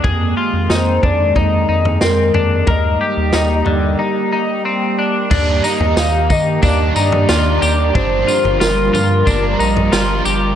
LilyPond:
<<
  \new Staff \with { instrumentName = "Soft synth lead" } { \time 4/4 \key ees \major \tempo 4 = 91 r4 c''8 d''8 ees''4 bes'4 | ees''2. r4 | d''8 ees''8 f''8 ees''8 d''2 | c''4 bes'2 r4 | }
  \new Staff \with { instrumentName = "Clean electric guitar" } { \time 4/4 \key ees \major aes'8 f'8 ees'8 d'8 ees'8 ees'8 c'8 d'8 | bes'8 g'8 ees'8 d8 ees'8 ees'8 c'8 d'8 | d'8 ees'8 ees'8 ees'8 d'8 ees'8 f'8 g'8 | d'8 f'8 f'8 f'8 d'8 ees'8 f'8 g'8 | }
  \new Staff \with { instrumentName = "Ambient pad" } { \time 4/4 \key ees \major <ees aes bes>1 | <g bes g'>1 | <ees bes g'>1 | <g f' bes'>1 | }
  \new Staff \with { instrumentName = "Overdriven electric guitar" } { \time 4/4 \key ees \major r1 | r1 | <ees g bes d' bes'>8 <bes bes'>4. <g bes d' bes'>4 <g bes d' bes'>4 | <g, d f bes d' bes'>2 <f bes d' bes'>4 <f bes d' bes'>4 | }
  \new Staff \with { instrumentName = "Analog synth bass" } { \clef bass \time 4/4 \key ees \major f,8 r16 f,16 f,8 f,8 f,8 f,8 f,8 f,8 | ees,8 r16 ees,16 ees,8 ees,8 r2 | ees,8 r16 ees,16 ees,8 ees8 ees,8 g,8 ees,8 ees,8 | g,,8 r16 g,,16 g,,8 g,8 g,,8 bes,,8 g,,8 g,,8 | }
  \new DrumStaff \with { instrumentName = "Drums" } \drummode { \time 4/4 <bd tomfh>4 sn8 <bd tomfh>8 <bd tomfh>8. tomfh16 sn8 tomfh8 | <bd tomfh>4 sn8 tomfh8 r4 r4 | <cymc bd tomfh>8 tamb16 tomfh16 <sn tamb>8 <bd tamb tomfh>8 <bd tamb tomfh>8 tamb16 tomfh16 <sn tamb>8 tamb8 | <bd tomfh>8 tamb16 tomfh16 <sn tamb>8 <tamb tomfh>8 <bd tamb tomfh>8 tamb16 tomfh16 <sn tamb>8 tamb8 | }
>>